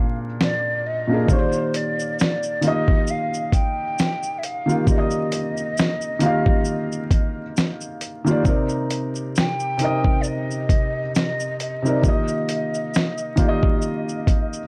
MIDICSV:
0, 0, Header, 1, 4, 480
1, 0, Start_track
1, 0, Key_signature, -3, "major"
1, 0, Tempo, 895522
1, 691, Time_signature, 4, 2, 24, 8
1, 7863, End_track
2, 0, Start_track
2, 0, Title_t, "Flute"
2, 0, Program_c, 0, 73
2, 0, Note_on_c, 0, 77, 108
2, 86, Note_off_c, 0, 77, 0
2, 223, Note_on_c, 0, 74, 95
2, 461, Note_on_c, 0, 75, 86
2, 469, Note_off_c, 0, 74, 0
2, 701, Note_on_c, 0, 72, 87
2, 709, Note_off_c, 0, 75, 0
2, 941, Note_on_c, 0, 74, 77
2, 949, Note_off_c, 0, 72, 0
2, 1176, Note_off_c, 0, 74, 0
2, 1180, Note_on_c, 0, 74, 88
2, 1425, Note_on_c, 0, 75, 91
2, 1433, Note_off_c, 0, 74, 0
2, 1661, Note_on_c, 0, 77, 88
2, 1669, Note_off_c, 0, 75, 0
2, 1894, Note_on_c, 0, 79, 92
2, 1902, Note_off_c, 0, 77, 0
2, 2347, Note_on_c, 0, 76, 62
2, 2355, Note_off_c, 0, 79, 0
2, 2377, Note_on_c, 0, 77, 89
2, 2385, Note_off_c, 0, 76, 0
2, 2614, Note_off_c, 0, 77, 0
2, 2621, Note_on_c, 0, 75, 84
2, 4035, Note_off_c, 0, 75, 0
2, 5030, Note_on_c, 0, 79, 106
2, 5473, Note_on_c, 0, 74, 64
2, 5481, Note_off_c, 0, 79, 0
2, 5507, Note_on_c, 0, 75, 94
2, 5515, Note_off_c, 0, 74, 0
2, 5978, Note_off_c, 0, 75, 0
2, 5981, Note_on_c, 0, 75, 89
2, 6200, Note_off_c, 0, 75, 0
2, 6223, Note_on_c, 0, 75, 84
2, 7863, Note_off_c, 0, 75, 0
2, 7863, End_track
3, 0, Start_track
3, 0, Title_t, "Felt piano"
3, 0, Program_c, 1, 0
3, 0, Control_c, 1, 64, 127
3, 0, Note_on_c, 1, 46, 79
3, 0, Note_on_c, 1, 58, 78
3, 0, Note_on_c, 1, 62, 77
3, 0, Note_on_c, 1, 68, 79
3, 0, Note_on_c, 1, 74, 93
3, 128, Note_off_c, 1, 46, 0
3, 133, Note_off_c, 1, 58, 0
3, 137, Note_off_c, 1, 62, 0
3, 142, Note_off_c, 1, 68, 0
3, 146, Note_off_c, 1, 74, 0
3, 575, Note_on_c, 1, 46, 67
3, 586, Note_on_c, 1, 58, 65
3, 595, Note_on_c, 1, 62, 66
3, 604, Note_on_c, 1, 68, 61
3, 611, Note_on_c, 1, 70, 77
3, 649, Note_off_c, 1, 46, 0
3, 654, Note_off_c, 1, 58, 0
3, 659, Note_off_c, 1, 62, 0
3, 664, Note_off_c, 1, 68, 0
3, 667, Note_off_c, 1, 70, 0
3, 675, Note_on_c, 1, 51, 67
3, 685, Note_on_c, 1, 58, 61
3, 694, Note_on_c, 1, 65, 62
3, 697, Control_c, 1, 64, 0
3, 702, Note_on_c, 1, 67, 64
3, 712, Note_on_c, 1, 73, 59
3, 741, Note_off_c, 1, 73, 0
3, 746, Note_on_c, 1, 74, 73
3, 783, Control_c, 1, 64, 127
3, 1157, Note_off_c, 1, 51, 0
3, 1162, Note_off_c, 1, 58, 0
3, 1166, Note_off_c, 1, 65, 0
3, 1170, Note_off_c, 1, 67, 0
3, 1192, Note_off_c, 1, 74, 0
3, 1400, Note_on_c, 1, 51, 68
3, 1409, Note_on_c, 1, 58, 64
3, 1416, Note_on_c, 1, 65, 61
3, 1425, Note_on_c, 1, 67, 67
3, 1434, Note_on_c, 1, 75, 78
3, 2049, Note_off_c, 1, 51, 0
3, 2054, Note_off_c, 1, 58, 0
3, 2057, Note_off_c, 1, 65, 0
3, 2061, Note_off_c, 1, 67, 0
3, 2066, Note_off_c, 1, 75, 0
3, 2497, Note_on_c, 1, 51, 71
3, 2505, Note_on_c, 1, 58, 65
3, 2513, Note_on_c, 1, 65, 67
3, 2522, Note_on_c, 1, 67, 62
3, 2531, Note_on_c, 1, 70, 74
3, 2570, Note_off_c, 1, 51, 0
3, 2574, Note_off_c, 1, 58, 0
3, 2578, Note_off_c, 1, 65, 0
3, 2583, Note_off_c, 1, 67, 0
3, 2587, Note_off_c, 1, 70, 0
3, 2597, Note_on_c, 1, 51, 67
3, 2608, Note_on_c, 1, 58, 58
3, 2617, Note_on_c, 1, 65, 66
3, 2625, Note_on_c, 1, 67, 61
3, 2634, Note_on_c, 1, 74, 56
3, 2662, Note_off_c, 1, 74, 0
3, 2669, Note_on_c, 1, 75, 73
3, 3078, Note_off_c, 1, 51, 0
3, 3083, Note_off_c, 1, 58, 0
3, 3088, Note_off_c, 1, 65, 0
3, 3092, Note_off_c, 1, 67, 0
3, 3114, Note_off_c, 1, 75, 0
3, 3319, Note_on_c, 1, 51, 86
3, 3329, Note_on_c, 1, 58, 80
3, 3337, Note_on_c, 1, 65, 75
3, 3345, Note_on_c, 1, 67, 80
3, 3355, Note_on_c, 1, 77, 92
3, 3968, Note_off_c, 1, 51, 0
3, 3973, Note_off_c, 1, 58, 0
3, 3977, Note_off_c, 1, 65, 0
3, 3981, Note_off_c, 1, 67, 0
3, 3986, Note_off_c, 1, 77, 0
3, 4419, Note_on_c, 1, 51, 86
3, 4429, Note_on_c, 1, 58, 79
3, 4436, Note_on_c, 1, 65, 81
3, 4447, Note_on_c, 1, 67, 76
3, 4455, Note_on_c, 1, 74, 92
3, 4491, Note_off_c, 1, 51, 0
3, 4496, Note_off_c, 1, 58, 0
3, 4500, Note_off_c, 1, 65, 0
3, 4505, Note_off_c, 1, 67, 0
3, 4509, Note_off_c, 1, 74, 0
3, 4518, Note_on_c, 1, 48, 78
3, 4528, Note_on_c, 1, 60, 78
3, 4537, Note_on_c, 1, 63, 75
3, 4539, Control_c, 1, 64, 0
3, 4546, Note_on_c, 1, 70, 79
3, 4554, Note_on_c, 1, 74, 88
3, 4628, Control_c, 1, 64, 127
3, 4998, Note_off_c, 1, 48, 0
3, 5003, Note_off_c, 1, 60, 0
3, 5008, Note_off_c, 1, 63, 0
3, 5012, Note_off_c, 1, 70, 0
3, 5016, Note_off_c, 1, 74, 0
3, 5239, Note_on_c, 1, 48, 75
3, 5250, Note_on_c, 1, 60, 63
3, 5258, Note_on_c, 1, 63, 67
3, 5267, Note_on_c, 1, 70, 70
3, 5276, Note_on_c, 1, 75, 84
3, 5889, Note_off_c, 1, 48, 0
3, 5894, Note_off_c, 1, 60, 0
3, 5898, Note_off_c, 1, 63, 0
3, 5902, Note_off_c, 1, 70, 0
3, 5907, Note_off_c, 1, 75, 0
3, 6337, Note_on_c, 1, 48, 75
3, 6347, Note_on_c, 1, 60, 66
3, 6355, Note_on_c, 1, 63, 67
3, 6363, Note_on_c, 1, 70, 66
3, 6373, Note_on_c, 1, 74, 80
3, 6410, Note_off_c, 1, 48, 0
3, 6415, Note_off_c, 1, 60, 0
3, 6419, Note_off_c, 1, 63, 0
3, 6423, Note_off_c, 1, 70, 0
3, 6428, Note_off_c, 1, 74, 0
3, 6441, Note_on_c, 1, 51, 66
3, 6450, Note_on_c, 1, 58, 63
3, 6457, Control_c, 1, 64, 0
3, 6458, Note_on_c, 1, 65, 63
3, 6467, Note_on_c, 1, 67, 67
3, 6477, Note_on_c, 1, 75, 71
3, 6540, Control_c, 1, 64, 127
3, 6920, Note_off_c, 1, 51, 0
3, 6924, Note_off_c, 1, 58, 0
3, 6928, Note_off_c, 1, 65, 0
3, 6933, Note_off_c, 1, 67, 0
3, 6938, Note_off_c, 1, 75, 0
3, 7160, Note_on_c, 1, 51, 86
3, 7169, Note_on_c, 1, 58, 76
3, 7174, Note_on_c, 1, 65, 78
3, 7183, Note_on_c, 1, 67, 81
3, 7193, Note_on_c, 1, 74, 71
3, 7222, Note_off_c, 1, 74, 0
3, 7228, Note_on_c, 1, 75, 91
3, 7809, Note_off_c, 1, 51, 0
3, 7813, Note_off_c, 1, 58, 0
3, 7816, Note_off_c, 1, 65, 0
3, 7821, Note_off_c, 1, 67, 0
3, 7843, Note_off_c, 1, 75, 0
3, 7863, End_track
4, 0, Start_track
4, 0, Title_t, "Drums"
4, 218, Note_on_c, 9, 38, 95
4, 271, Note_off_c, 9, 38, 0
4, 689, Note_on_c, 9, 36, 96
4, 693, Note_on_c, 9, 82, 74
4, 742, Note_off_c, 9, 36, 0
4, 746, Note_off_c, 9, 82, 0
4, 818, Note_on_c, 9, 82, 44
4, 871, Note_off_c, 9, 82, 0
4, 934, Note_on_c, 9, 42, 68
4, 934, Note_on_c, 9, 82, 49
4, 987, Note_off_c, 9, 42, 0
4, 987, Note_off_c, 9, 82, 0
4, 1069, Note_on_c, 9, 82, 44
4, 1123, Note_off_c, 9, 82, 0
4, 1175, Note_on_c, 9, 82, 60
4, 1186, Note_on_c, 9, 38, 94
4, 1228, Note_off_c, 9, 82, 0
4, 1240, Note_off_c, 9, 38, 0
4, 1303, Note_on_c, 9, 82, 40
4, 1356, Note_off_c, 9, 82, 0
4, 1407, Note_on_c, 9, 42, 62
4, 1407, Note_on_c, 9, 82, 45
4, 1460, Note_off_c, 9, 42, 0
4, 1460, Note_off_c, 9, 82, 0
4, 1543, Note_on_c, 9, 36, 83
4, 1597, Note_off_c, 9, 36, 0
4, 1647, Note_on_c, 9, 82, 65
4, 1701, Note_off_c, 9, 82, 0
4, 1790, Note_on_c, 9, 82, 44
4, 1843, Note_off_c, 9, 82, 0
4, 1889, Note_on_c, 9, 36, 80
4, 1893, Note_on_c, 9, 42, 49
4, 1893, Note_on_c, 9, 82, 36
4, 1943, Note_off_c, 9, 36, 0
4, 1947, Note_off_c, 9, 42, 0
4, 1947, Note_off_c, 9, 82, 0
4, 2137, Note_on_c, 9, 82, 75
4, 2143, Note_on_c, 9, 38, 105
4, 2190, Note_off_c, 9, 82, 0
4, 2196, Note_off_c, 9, 38, 0
4, 2267, Note_on_c, 9, 82, 49
4, 2321, Note_off_c, 9, 82, 0
4, 2377, Note_on_c, 9, 42, 56
4, 2377, Note_on_c, 9, 82, 39
4, 2430, Note_off_c, 9, 42, 0
4, 2430, Note_off_c, 9, 82, 0
4, 2515, Note_on_c, 9, 82, 46
4, 2569, Note_off_c, 9, 82, 0
4, 2610, Note_on_c, 9, 36, 103
4, 2613, Note_on_c, 9, 82, 71
4, 2664, Note_off_c, 9, 36, 0
4, 2666, Note_off_c, 9, 82, 0
4, 2737, Note_on_c, 9, 82, 42
4, 2790, Note_off_c, 9, 82, 0
4, 2851, Note_on_c, 9, 42, 70
4, 2851, Note_on_c, 9, 82, 48
4, 2905, Note_off_c, 9, 42, 0
4, 2905, Note_off_c, 9, 82, 0
4, 2986, Note_on_c, 9, 82, 44
4, 3040, Note_off_c, 9, 82, 0
4, 3095, Note_on_c, 9, 82, 64
4, 3106, Note_on_c, 9, 38, 97
4, 3148, Note_off_c, 9, 82, 0
4, 3160, Note_off_c, 9, 38, 0
4, 3223, Note_on_c, 9, 82, 42
4, 3276, Note_off_c, 9, 82, 0
4, 3326, Note_on_c, 9, 42, 61
4, 3326, Note_on_c, 9, 82, 47
4, 3379, Note_off_c, 9, 42, 0
4, 3379, Note_off_c, 9, 82, 0
4, 3463, Note_on_c, 9, 36, 86
4, 3517, Note_off_c, 9, 36, 0
4, 3564, Note_on_c, 9, 82, 61
4, 3617, Note_off_c, 9, 82, 0
4, 3710, Note_on_c, 9, 82, 44
4, 3764, Note_off_c, 9, 82, 0
4, 3809, Note_on_c, 9, 36, 80
4, 3811, Note_on_c, 9, 42, 48
4, 3811, Note_on_c, 9, 82, 35
4, 3863, Note_off_c, 9, 36, 0
4, 3864, Note_off_c, 9, 42, 0
4, 3864, Note_off_c, 9, 82, 0
4, 4056, Note_on_c, 9, 82, 72
4, 4062, Note_on_c, 9, 38, 98
4, 4109, Note_off_c, 9, 82, 0
4, 4116, Note_off_c, 9, 38, 0
4, 4186, Note_on_c, 9, 82, 50
4, 4239, Note_off_c, 9, 82, 0
4, 4294, Note_on_c, 9, 42, 53
4, 4294, Note_on_c, 9, 82, 40
4, 4348, Note_off_c, 9, 42, 0
4, 4348, Note_off_c, 9, 82, 0
4, 4432, Note_on_c, 9, 82, 48
4, 4486, Note_off_c, 9, 82, 0
4, 4530, Note_on_c, 9, 36, 103
4, 4531, Note_on_c, 9, 82, 67
4, 4583, Note_off_c, 9, 36, 0
4, 4585, Note_off_c, 9, 82, 0
4, 4658, Note_on_c, 9, 82, 45
4, 4712, Note_off_c, 9, 82, 0
4, 4773, Note_on_c, 9, 42, 71
4, 4773, Note_on_c, 9, 82, 50
4, 4827, Note_off_c, 9, 42, 0
4, 4827, Note_off_c, 9, 82, 0
4, 4906, Note_on_c, 9, 82, 46
4, 4959, Note_off_c, 9, 82, 0
4, 5015, Note_on_c, 9, 82, 61
4, 5026, Note_on_c, 9, 38, 95
4, 5069, Note_off_c, 9, 82, 0
4, 5080, Note_off_c, 9, 38, 0
4, 5144, Note_on_c, 9, 82, 43
4, 5198, Note_off_c, 9, 82, 0
4, 5248, Note_on_c, 9, 42, 65
4, 5248, Note_on_c, 9, 82, 44
4, 5301, Note_off_c, 9, 42, 0
4, 5301, Note_off_c, 9, 82, 0
4, 5384, Note_on_c, 9, 36, 85
4, 5438, Note_off_c, 9, 36, 0
4, 5486, Note_on_c, 9, 82, 64
4, 5540, Note_off_c, 9, 82, 0
4, 5633, Note_on_c, 9, 82, 43
4, 5687, Note_off_c, 9, 82, 0
4, 5731, Note_on_c, 9, 36, 74
4, 5734, Note_on_c, 9, 42, 50
4, 5734, Note_on_c, 9, 82, 37
4, 5785, Note_off_c, 9, 36, 0
4, 5787, Note_off_c, 9, 42, 0
4, 5787, Note_off_c, 9, 82, 0
4, 5977, Note_on_c, 9, 82, 72
4, 5983, Note_on_c, 9, 38, 104
4, 6031, Note_off_c, 9, 82, 0
4, 6037, Note_off_c, 9, 38, 0
4, 6109, Note_on_c, 9, 82, 49
4, 6163, Note_off_c, 9, 82, 0
4, 6218, Note_on_c, 9, 42, 55
4, 6218, Note_on_c, 9, 82, 38
4, 6271, Note_off_c, 9, 42, 0
4, 6271, Note_off_c, 9, 82, 0
4, 6355, Note_on_c, 9, 82, 47
4, 6409, Note_off_c, 9, 82, 0
4, 6451, Note_on_c, 9, 36, 103
4, 6454, Note_on_c, 9, 82, 69
4, 6505, Note_off_c, 9, 36, 0
4, 6507, Note_off_c, 9, 82, 0
4, 6582, Note_on_c, 9, 82, 45
4, 6635, Note_off_c, 9, 82, 0
4, 6693, Note_on_c, 9, 42, 69
4, 6693, Note_on_c, 9, 82, 51
4, 6747, Note_off_c, 9, 42, 0
4, 6747, Note_off_c, 9, 82, 0
4, 6830, Note_on_c, 9, 82, 44
4, 6884, Note_off_c, 9, 82, 0
4, 6936, Note_on_c, 9, 82, 59
4, 6947, Note_on_c, 9, 38, 95
4, 6989, Note_off_c, 9, 82, 0
4, 7001, Note_off_c, 9, 38, 0
4, 7062, Note_on_c, 9, 82, 41
4, 7116, Note_off_c, 9, 82, 0
4, 7168, Note_on_c, 9, 42, 65
4, 7168, Note_on_c, 9, 82, 44
4, 7170, Note_on_c, 9, 36, 83
4, 7221, Note_off_c, 9, 42, 0
4, 7221, Note_off_c, 9, 82, 0
4, 7224, Note_off_c, 9, 36, 0
4, 7305, Note_on_c, 9, 36, 87
4, 7359, Note_off_c, 9, 36, 0
4, 7407, Note_on_c, 9, 82, 63
4, 7461, Note_off_c, 9, 82, 0
4, 7551, Note_on_c, 9, 82, 44
4, 7605, Note_off_c, 9, 82, 0
4, 7650, Note_on_c, 9, 36, 83
4, 7653, Note_on_c, 9, 42, 50
4, 7653, Note_on_c, 9, 82, 37
4, 7703, Note_off_c, 9, 36, 0
4, 7707, Note_off_c, 9, 42, 0
4, 7707, Note_off_c, 9, 82, 0
4, 7789, Note_on_c, 9, 82, 41
4, 7843, Note_off_c, 9, 82, 0
4, 7863, End_track
0, 0, End_of_file